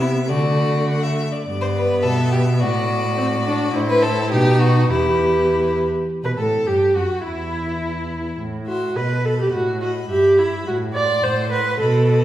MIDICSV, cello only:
0, 0, Header, 1, 2, 480
1, 0, Start_track
1, 0, Tempo, 575816
1, 247, Time_signature, 2, 2, 24, 8
1, 3604, Tempo, 589391
1, 5044, Tempo, 570342
1, 10223, End_track
2, 0, Start_track
2, 0, Title_t, "Cello"
2, 0, Program_c, 0, 42
2, 0, Note_on_c, 0, 48, 73
2, 248, Note_on_c, 0, 50, 64
2, 260, Note_off_c, 0, 48, 0
2, 1052, Note_off_c, 0, 50, 0
2, 1219, Note_on_c, 0, 43, 70
2, 1692, Note_on_c, 0, 47, 66
2, 1705, Note_off_c, 0, 43, 0
2, 2178, Note_on_c, 0, 45, 75
2, 2190, Note_off_c, 0, 47, 0
2, 3119, Note_off_c, 0, 45, 0
2, 3124, Note_on_c, 0, 45, 83
2, 3602, Note_on_c, 0, 47, 79
2, 3615, Note_off_c, 0, 45, 0
2, 4073, Note_off_c, 0, 47, 0
2, 4078, Note_on_c, 0, 40, 72
2, 4863, Note_off_c, 0, 40, 0
2, 5165, Note_on_c, 0, 47, 49
2, 5279, Note_off_c, 0, 47, 0
2, 5288, Note_on_c, 0, 45, 59
2, 5523, Note_off_c, 0, 45, 0
2, 5528, Note_on_c, 0, 43, 53
2, 5765, Note_off_c, 0, 43, 0
2, 5769, Note_on_c, 0, 42, 53
2, 5836, Note_off_c, 0, 42, 0
2, 6009, Note_on_c, 0, 40, 57
2, 6957, Note_off_c, 0, 40, 0
2, 6979, Note_on_c, 0, 45, 56
2, 7402, Note_off_c, 0, 45, 0
2, 7453, Note_on_c, 0, 47, 51
2, 7876, Note_off_c, 0, 47, 0
2, 7934, Note_on_c, 0, 45, 58
2, 8355, Note_off_c, 0, 45, 0
2, 8407, Note_on_c, 0, 43, 54
2, 8832, Note_off_c, 0, 43, 0
2, 8888, Note_on_c, 0, 45, 63
2, 9311, Note_off_c, 0, 45, 0
2, 9371, Note_on_c, 0, 45, 61
2, 9791, Note_off_c, 0, 45, 0
2, 9846, Note_on_c, 0, 47, 76
2, 10223, Note_off_c, 0, 47, 0
2, 10223, End_track
0, 0, End_of_file